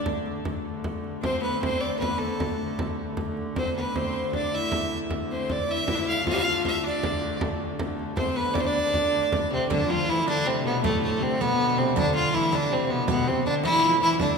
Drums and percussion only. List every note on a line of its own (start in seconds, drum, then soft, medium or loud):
0.06 frame drum medium
0.26 frame drum soft
0.45 frame drum medium
0.84 frame drum medium
1.04 frame drum soft
1.23 frame drum medium
1.63 frame drum medium
2.02 frame drum medium
2.21 frame drum soft
2.40 frame drum medium
2.79 frame drum medium
3.17 frame drum medium
3.37 frame drum soft
3.56 frame drum medium
3.96 frame drum medium
4.33 frame drum medium
4.72 frame drum medium
4.92 frame drum soft
5.11 frame drum medium
5.50 frame drum medium
5.69 frame drum soft
5.88 frame drum medium
6.27 frame drum medium
6.65 frame drum medium
6.84 frame drum soft
7.03 frame drum medium
7.41 frame drum medium
7.79 frame drum medium
7.99 frame drum soft
8.17 frame drum medium
8.55 frame drum medium
8.94 frame drum medium
9.14 frame drum soft
9.32 frame drum medium
9.70 riq medium
9.70 frame drum loud
9.90 frame drum soft
10.28 riq soft
10.28 frame drum medium
10.84 riq medium
10.84 frame drum medium
11.03 frame drum soft
11.41 riq medium
11.41 frame drum medium
11.96 riq medium
11.96 frame drum medium
12.15 frame drum soft
12.52 riq medium
12.52 frame drum medium
13.08 riq medium
13.08 frame drum medium
13.46 riq soft
13.46 frame drum soft
13.64 riq medium
13.64 frame drum medium
13.82 frame drum soft
14.01 riq soft
14.01 frame drum soft
14.20 riq medium
14.20 frame drum medium